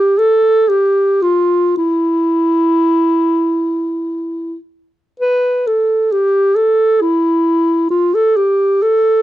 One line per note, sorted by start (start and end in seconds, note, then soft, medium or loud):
0.00 0.20 G4 medium
0.18 0.70 A4 medium
0.69 1.24 G4 soft
1.22 1.76 F4 soft
1.77 4.56 E4 medium
5.20 5.68 B4 medium
5.67 6.13 A4 soft
6.12 6.57 G4 medium
6.55 7.03 A4 medium
7.01 7.90 E4 medium
7.90 8.16 F4 medium
8.14 8.38 A4 medium
8.36 8.84 G4 soft
8.82 9.22 A4 medium